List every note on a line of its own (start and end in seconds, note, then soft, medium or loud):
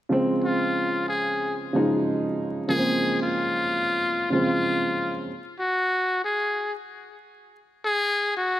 0.09 1.09 C#3 medium
0.09 1.09 F3 medium
0.09 1.10 G#3 medium
0.09 1.10 C4 loud
0.44 1.05 F4 medium
1.08 1.57 G#4 medium
1.73 2.48 C#3 medium
1.73 2.49 F3 medium
1.73 2.49 G#3 medium
1.73 2.50 D#4 medium
2.68 3.67 C#3 medium
2.68 3.67 F3 medium
2.68 3.68 G#3 medium
2.68 2.78 A#3 medium
2.68 3.18 G#4 loud
2.78 3.72 C4 medium
3.22 4.27 F4 medium
4.30 5.06 C#3 medium
4.30 5.06 F3 medium
4.30 5.07 G#3 medium
4.30 5.07 C4 medium
4.30 5.24 F4 medium
5.60 6.20 F#4 medium
6.24 6.73 G#4 medium
7.85 8.34 G#4 medium
8.37 8.60 F#4 medium